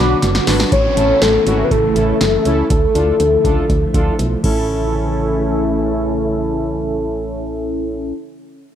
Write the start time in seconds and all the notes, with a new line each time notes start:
Already playing: B1 D3 F#3 B3 D4 F#4 B4 D6
0.22 F#1, snare, closed hi-hat
0.35 snare
0.47 G#1 D4 F#4 B4, snare, open hi-hat
0.59 D4 F#4 B4, snare
0.71 A1 C#3 E3 A3 E4 C#5, kick, closed hi-hat, downlifter
0.96 A1 C#4 E4 A4, closed hi-hat
1.22 A1 A4, snare, closed hi-hat
1.46 G#1 C#4 E4 F#4, closed hi-hat
1.64 B4
1.71 A1 A4, kick, closed hi-hat
1.96 A1 C#4 E4 A4, closed hi-hat
2.21 F#1, snare, closed hi-hat
2.45 C#2 C#4 E4 A4, closed hi-hat
2.70 D2 D3 F3 A4, kick, closed hi-hat
2.95 D2 D4 F4 A4, closed hi-hat
3.20 D2, closed hi-hat
3.44 C#2 D4 F4 A4, kick, closed hi-hat
3.69 D2, kick, closed hi-hat
3.94 D2 D4 F4 A4, kick, closed hi-hat
4.19 B1, closed hi-hat
4.44 A1 C#3 E3 A3 C#4 E4 A4, kick, crash